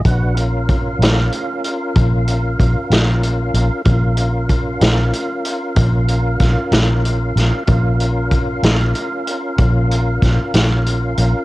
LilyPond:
<<
  \new Staff \with { instrumentName = "Tonewheel organ" } { \time 12/8 \key bes \minor \tempo 4. = 63 <d' ges' ces'' ges''>8 <des' f' bes' f''>1~ <des' f' bes' f''>4. | <des' f' bes' f''>1. | <des' f' bes' f''>1. | }
  \new Staff \with { instrumentName = "Fingered electric bass" } { \clef bass \time 12/8 \key bes \minor bes,,4. bes,,8 r4 bes,,4 bes,,16 r16 bes,,4 bes,,16 r16 | bes,,4. bes,,8 r4 bes,,4 bes,,16 r16 bes,,4 bes,,16 r16 | bes,,4. bes,,8 r4 bes,,4 bes,,16 r16 bes,,4 bes,,16 r16 | }
  \new DrumStaff \with { instrumentName = "Drums" } \drummode { \time 12/8 <hh bd>8 hh8 <hh bd>8 <hh sn>8 hh8 hh8 <hh bd>8 hh8 <hh bd>8 <hh sn>8 hh8 hh8 | <hh bd>8 hh8 <hh bd>8 <hh sn>8 hh8 hh8 <hh bd>8 hh8 <hh bd sn>8 <hh sn>8 hh8 <hh sn>8 | <hh bd>8 hh8 <hh bd>8 <hh sn>8 hh8 hh8 <hh bd>8 hh8 <hh bd sn>8 <hh sn>8 hh8 hh8 | }
>>